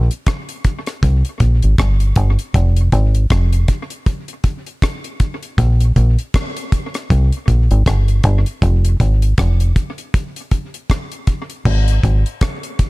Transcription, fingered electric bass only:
1.03 C2
1.41 A#1
1.64 G#1
1.79 G1
2.17 G1
2.55 F1
2.93 G#1
3.31 F1
5.59 A#1
5.97 A#1
7.11 C2
7.49 A#1
7.71 G#1
7.87 G1
8.24 G1
8.63 F1
9.00 G#1
9.38 F1
11.66 G#1
12.04 G#1

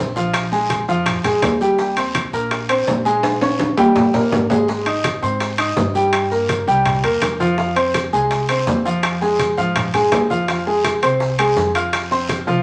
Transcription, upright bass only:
Already playing: A#1
0.88 F2
1.24 F2
1.43 D#2
2.33 A#1
2.87 A#1
3.78 D#2
4.14 A#1
4.32 G#1
5.22 G#2
5.77 G2
6.67 C2
7.04 E2
7.22 F2
8.13 C2
8.67 F2
9.58 G#2
9.94 G2
10.12 F2
11.03 C2
11.57 F2
12.47 C2

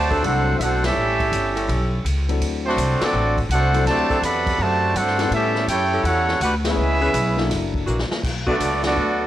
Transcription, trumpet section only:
Already playing: F#4 C5 D5 A5
0.26 D4 A4 C5 F#5
0.58 D4 E5 F#5
0.62 A4 C5
0.85 C#4 G4 A4 E5
2.67 A3 D4 F#4 C5
3.02 C4 F#4 A4 D5
3.51 D4 A4 C5 F#5
3.88 F#4 C5 D5 A5
4.24 A4 D5 F#5 B5
4.61 F#4 C5 D5 A5
4.97 D4 A4 C5 F#5
5.33 C#4 G4 A4 E5
5.69 E4 A4 C#5 G5
6.05 E4 A4 C#5 F#5
6.42 D4 G4 B4 F#5
6.67 C#4 G#4 B4 E5
8.48 B3 F#4 A4 D5
8.85 B3 F#4 A4 D5

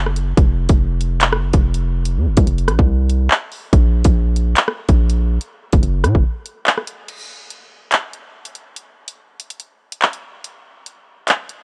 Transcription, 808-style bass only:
Already playing: F#1
0.37 F1
0.69 F1
1.32 F#1
1.53 F1
2.16 F2
2.26 F1
2.37 C2
2.47 F1
2.68 A1
2.79 C2
3.73 A#1
4.05 A#1
4.89 A#1
5.73 F#1
5.83 F#1
6.04 A#2
6.15 F#1

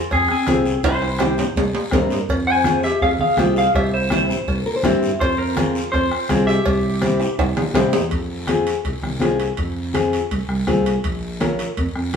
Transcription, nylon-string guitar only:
0.47 C4 F4 G#4
1.20 C4 E4 G4
1.92 C4 E4 A#4
2.64 C4 F4 G#4
3.38 C4 F4 G4
4.11 C4 E4 G4
4.66 A#4
4.76 C5
4.84 C4 E4 G4 E5
5.56 C4 F4 G#4
6.30 C4 F4 G#4
7.01 C4 E4 G4
7.74 C4 E4 G4
8.48 C4 F4 G#4
9.20 C4 F4 G#4
9.94 C4 F4 G#4
10.67 C4 F4 G#4
11.40 C#4 F4 A#4

